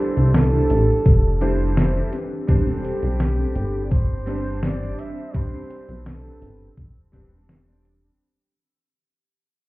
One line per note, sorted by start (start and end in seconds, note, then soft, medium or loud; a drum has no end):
0.00 2.15 E3 medium
0.00 1.41 G3 loud
0.00 0.17 D4 loud
0.00 1.41 D4 medium
0.00 0.17 E4 loud
0.00 1.38 E4 medium
0.00 0.17 G4 loud
0.00 8.16 G4 medium
0.00 0.17 A4 loud
0.00 2.15 A4 loud
0.00 0.36 C5 loud
0.00 2.09 D5 medium
0.00 2.09 A5 medium
0.00 2.09 E6 medium
0.17 0.60 C2 medium
0.17 closed hi-hat soft
0.34 1.77 A4 loud
0.34 snare loud
0.34 closed hi-hat medium
0.53 0.97 D4 medium
0.53 0.97 E4 medium
0.53 0.97 G4 medium
0.53 0.98 C5 loud
0.70 0.94 A1 loud
0.70 closed hi-hat medium
1.06 2.03 F1 medium
1.06 kick loud
1.06 closed hi-hat medium
1.41 2.11 G3 medium
1.41 2.11 D4 medium
1.41 1.69 D4 loud
1.41 2.11 E4 medium
1.41 1.69 E4 loud
1.41 1.69 G4 loud
1.41 1.69 A4 loud
1.41 2.11 C5 loud
1.41 closed hi-hat medium
1.77 snare loud
1.77 closed hi-hat medium
1.96 2.12 D4 medium
1.96 2.13 E4 medium
1.96 2.12 G4 medium
1.96 2.13 A4 loud
2.13 8.16 C4 medium
2.13 2.56 C4 medium
2.13 2.56 D4 medium
2.13 2.56 G4 medium
2.13 2.56 B4 loud
2.13 8.16 B5 medium
2.13 4.96 D6 medium
2.13 closed hi-hat medium
2.47 2.92 E1 loud
2.47 4.22 G3 medium
2.47 4.23 C4 medium
2.47 4.23 D4 medium
2.47 3.86 G4 loud
2.47 4.24 C5 medium
2.47 kick loud
2.47 closed hi-hat medium
2.67 3.03 C4 loud
2.67 3.03 D4 loud
2.67 3.03 G4 loud
2.67 3.03 A4 loud
2.84 closed hi-hat medium
3.03 3.46 B1 loud
3.03 closed hi-hat soft
3.20 snare loud
3.20 closed hi-hat medium
3.38 3.83 C4 medium
3.38 3.83 D4 medium
3.38 3.83 G4 medium
3.38 3.83 A4 loud
3.55 4.89 G1 loud
3.55 closed hi-hat medium
3.85 3.93 D5 medium
3.91 4.63 C5 loud
3.91 kick loud
3.91 closed hi-hat medium
4.26 5.30 G3 medium
4.26 4.54 C4 loud
4.26 5.30 C4 medium
4.26 4.54 D4 loud
4.26 5.31 D4 medium
4.26 4.54 G4 loud
4.26 4.54 B4 loud
4.26 5.31 C5 loud
4.26 closed hi-hat medium
4.63 5.01 D5 loud
4.63 snare loud
4.63 closed hi-hat medium
4.81 5.17 C4 medium
4.81 5.17 D4 medium
4.81 5.17 G4 medium
4.81 5.17 D5 loud
4.99 5.36 E5 loud
4.99 8.17 E6 medium
4.99 closed hi-hat medium
5.33 7.08 G3 medium
5.33 7.09 C4 medium
5.33 7.09 D4 medium
5.33 6.06 C5 loud
5.33 7.10 B5 medium
5.33 kick loud
5.33 closed hi-hat medium
5.52 5.89 C4 loud
5.52 5.89 D4 loud
5.52 5.89 G4 loud
5.52 5.89 C5 loud
5.70 closed hi-hat medium
5.89 6.32 B1 medium
5.89 closed hi-hat soft
6.06 6.74 A4 loud
6.06 snare loud
6.06 closed hi-hat medium
6.24 6.69 C4 medium
6.24 6.69 D4 medium
6.24 6.69 G4 medium
6.24 6.69 B4 loud
6.42 6.65 G1 loud
6.42 closed hi-hat medium
6.77 7.13 E1 medium
6.77 kick loud
6.77 closed hi-hat medium
7.12 8.11 E1 loud
7.12 8.15 G3 medium
7.12 8.16 C4 medium
7.12 7.40 C4 loud
7.12 7.40 D4 loud
7.12 8.16 D4 medium
7.12 7.40 G4 loud
7.12 7.41 B4 loud
7.12 kick medium
7.12 closed hi-hat medium
7.49 snare loud
7.49 closed hi-hat medium
7.67 8.03 C4 medium
7.67 8.03 D4 medium
7.67 8.03 G4 medium
7.67 8.03 D5 medium
7.85 closed hi-hat medium